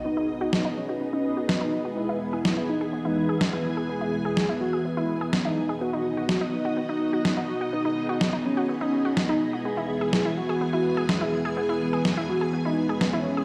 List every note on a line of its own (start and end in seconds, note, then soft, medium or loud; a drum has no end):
0.00 0.26 B3 medium
0.00 5.77 B3 medium
0.00 0.26 D#4 medium
0.00 1.93 D#4 medium
0.00 0.26 F#4 medium
0.00 0.26 D#5 medium
0.00 1.93 D#5 medium
0.05 0.13 B3 medium
0.05 0.30 D#4 loud
0.05 5.77 G#4 medium
0.17 0.28 D#4 loud
0.29 0.62 B3 medium
0.29 0.62 D#4 medium
0.29 0.62 F#4 medium
0.29 0.62 D#5 medium
0.41 0.66 D#4 medium
0.41 0.49 F#4 loud
0.53 0.61 B3 medium
0.53 snare loud
0.65 0.78 B3 medium
0.65 0.76 D#4 loud
0.65 0.78 D#4 medium
0.65 0.78 F#4 medium
0.65 0.78 D#5 medium
0.77 1.02 C#4 medium
0.89 0.97 F#4 loud
1.01 1.09 B3 medium
1.13 1.46 B3 medium
1.13 1.47 C#4 medium
1.13 1.24 D#4 loud
1.13 1.46 D#4 medium
1.13 1.46 F#4 medium
1.13 1.46 D#5 loud
1.37 1.45 F#4 loud
1.49 1.82 B3 medium
1.49 1.57 B3 medium
1.49 1.82 D#4 medium
1.49 1.82 F#4 medium
1.49 1.82 D#5 medium
1.49 snare loud
1.61 1.72 D#4 loud
1.61 1.86 D#4 medium
1.85 2.18 G#3 medium
1.85 2.18 B3 medium
1.85 2.18 E4 medium
1.85 1.93 F#4 loud
1.85 2.18 B4 medium
1.97 5.77 E3 medium
1.97 2.05 B3 medium
1.97 2.22 E4 loud
1.97 5.77 G#5 medium
2.09 2.21 E4 loud
2.21 2.54 G#3 medium
2.21 2.54 B3 medium
2.21 2.54 E4 medium
2.21 2.54 B4 medium
2.33 2.58 E4 medium
2.33 2.41 G#4 loud
2.45 2.53 B3 medium
2.45 snare loud
2.57 2.70 G#3 medium
2.57 2.70 B3 medium
2.57 2.68 E4 loud
2.57 2.70 E4 medium
2.57 2.70 B4 medium
2.69 2.94 D#4 medium
2.81 2.89 G#4 loud
2.93 3.01 B3 medium
3.05 3.38 E3 medium
3.05 3.38 G#3 medium
3.05 3.38 B3 medium
3.05 3.39 D#4 medium
3.05 3.16 E4 loud
3.05 3.38 B4 loud
3.29 3.37 G#4 loud
3.41 3.74 G#3 medium
3.41 3.49 B3 medium
3.41 3.74 B3 medium
3.41 3.74 E4 medium
3.41 3.74 B4 medium
3.41 snare loud
3.53 3.78 E4 medium
3.53 3.65 E4 medium
3.77 4.10 G#3 medium
3.77 4.10 B3 medium
3.77 4.10 E4 medium
3.77 3.85 G#4 loud
3.77 4.10 B4 medium
3.89 3.97 B3 medium
3.89 4.14 G#4 loud
4.01 4.13 E4 loud
4.13 4.46 G#3 medium
4.13 4.46 B3 medium
4.13 4.46 E4 medium
4.13 4.46 B4 medium
4.25 4.50 G#4 medium
4.25 4.33 G#4 loud
4.37 4.45 B3 medium
4.37 snare loud
4.49 4.62 G#3 medium
4.49 4.62 B3 medium
4.49 4.61 E4 loud
4.49 4.62 E4 medium
4.49 4.62 B4 medium
4.61 4.86 F#4 medium
4.73 4.81 G#4 loud
4.85 4.93 B3 medium
4.97 5.30 G#3 medium
4.97 5.30 B3 medium
4.97 5.30 E4 loud
4.97 5.30 E4 medium
4.97 5.09 E4 loud
4.97 5.30 B4 loud
5.21 5.29 G#4 loud
5.33 5.66 G#3 medium
5.33 5.41 B3 medium
5.33 5.66 B3 medium
5.33 5.66 E4 medium
5.33 5.66 B4 medium
5.33 snare loud
5.45 5.70 D#4 medium
5.45 5.57 E4 loud
5.69 6.02 B3 medium
5.69 6.02 D#4 medium
5.69 6.02 F#4 medium
5.69 5.77 G#4 loud
5.69 6.02 D#5 medium
5.81 5.89 B3 medium
5.81 13.45 B3 medium
5.81 9.61 D#4 medium
5.81 6.06 F#4 loud
5.81 7.71 F#4 medium
5.81 9.61 D#5 medium
5.93 6.05 D#4 loud
6.05 6.38 B3 medium
6.05 6.38 D#4 medium
6.05 6.38 F#4 medium
6.05 6.38 D#5 medium
6.17 6.25 F#4 medium
6.17 6.42 F#4 loud
6.29 6.37 B3 medium
6.29 snare loud
6.41 6.54 B3 medium
6.41 6.53 D#4 loud
6.41 6.54 D#4 medium
6.41 6.54 F#4 medium
6.41 6.54 D#5 medium
6.53 6.78 D#4 medium
6.65 6.73 F#4 loud
6.77 6.85 B3 medium
6.89 7.22 B3 medium
6.89 7.00 D#4 loud
6.89 7.22 D#4 medium
6.89 7.23 D#4 medium
6.89 7.22 F#4 medium
6.89 7.22 D#5 loud
7.13 7.21 F#4 loud
7.25 7.33 B3 medium
7.25 7.58 B3 medium
7.25 7.58 D#4 medium
7.25 7.58 F#4 medium
7.25 7.58 D#5 medium
7.25 snare loud
7.37 7.48 D#4 loud
7.37 7.62 F#4 loud
7.61 7.94 B3 medium
7.61 7.94 D#4 medium
7.61 7.69 F#4 loud
7.61 7.94 F#4 medium
7.61 7.94 D#5 medium
7.73 7.81 B3 medium
7.73 7.98 D#4 loud
7.73 13.45 G#4 medium
7.85 7.96 D#4 loud
7.97 8.30 B3 medium
7.97 8.30 D#4 medium
7.97 8.30 F#4 medium
7.97 8.30 D#5 medium
8.09 8.34 D#4 medium
8.09 8.17 F#4 loud
8.21 8.29 B3 medium
8.21 snare loud
8.33 8.46 B3 medium
8.33 8.45 D#4 loud
8.33 8.46 D#4 medium
8.33 8.46 F#4 medium
8.33 8.46 D#5 medium
8.45 8.70 C#4 medium
8.57 8.65 F#4 loud
8.69 8.77 B3 medium
8.81 9.14 B3 medium
8.81 9.15 C#4 medium
8.81 9.14 D#4 medium
8.81 8.93 D#4 loud
8.81 9.14 F#4 medium
8.81 9.14 D#5 loud
9.05 9.13 F#4 loud
9.17 9.25 B3 medium
9.17 9.50 B3 medium
9.17 9.50 D#4 medium
9.17 9.50 F#4 medium
9.17 9.50 D#5 medium
9.17 snare loud
9.29 9.54 D#4 medium
9.29 9.41 D#4 loud
9.53 9.86 G#3 medium
9.53 9.86 B3 medium
9.53 9.86 E4 medium
9.53 9.61 F#4 loud
9.53 9.86 B4 medium
9.65 13.45 E3 medium
9.65 9.73 B3 medium
9.65 9.90 G#4 loud
9.65 13.45 G#5 medium
9.77 9.89 E4 loud
9.89 10.22 G#3 medium
9.89 10.22 B3 medium
9.89 10.22 E4 medium
9.89 10.22 B4 medium
10.01 10.09 G#4 loud
10.01 10.26 G#4 medium
10.13 10.21 B3 medium
10.13 snare loud
10.25 10.38 G#3 medium
10.25 10.38 B3 medium
10.25 10.38 E4 medium
10.25 10.37 E4 loud
10.25 10.38 B4 loud
10.37 10.62 F#4 loud
10.49 10.57 G#4 loud
10.61 10.69 B3 medium
10.73 11.06 G#3 medium
10.73 11.06 B3 medium
10.73 11.06 E4 medium
10.73 10.85 E4 loud
10.73 11.06 F#4 medium
10.73 11.06 B4 loud
10.97 11.05 G#4 loud
11.09 11.42 G#3 medium
11.09 11.42 B3 medium
11.09 11.17 B3 medium
11.09 11.42 E4 medium
11.09 11.42 B4 medium
11.09 snare loud
11.21 11.33 E4 loud
11.21 11.46 G#4 medium
11.45 11.78 G#3 medium
11.45 11.78 B3 medium
11.45 11.78 E4 medium
11.45 11.53 G#4 loud
11.45 11.78 B4 medium
11.57 11.65 B3 medium
11.57 11.82 G#4 loud
11.69 11.81 E4 medium
11.81 12.14 G#3 medium
11.81 12.14 B3 medium
11.81 12.14 E4 medium
11.81 12.14 B4 medium
11.93 12.01 G#4 loud
11.93 12.18 G#4 medium
12.05 12.13 B3 medium
12.05 snare loud
12.17 12.30 G#3 medium
12.17 12.30 B3 medium
12.17 12.30 E4 medium
12.17 12.29 E4 loud
12.17 12.30 B4 loud
12.29 12.54 F#4 medium
12.41 12.49 G#4 loud
12.53 12.61 B3 medium
12.65 12.75 G#3 loud
12.65 12.75 B3 medium
12.65 12.99 D#4 loud
12.65 12.75 E4 medium
12.65 12.77 E4 loud
12.65 12.75 B4 loud
12.77 13.10 G#3 medium
12.77 13.10 B3 medium
12.77 13.10 E4 medium
12.77 13.10 B4 loud
12.89 12.97 G#4 medium
13.01 13.09 B3 medium
13.01 snare loud
13.13 13.45 G#3 medium
13.13 13.45 B3 medium
13.13 13.38 C#4 medium
13.13 13.45 E4 medium
13.13 13.25 E4 loud
13.13 13.45 C#5 loud
13.37 13.45 G#4 loud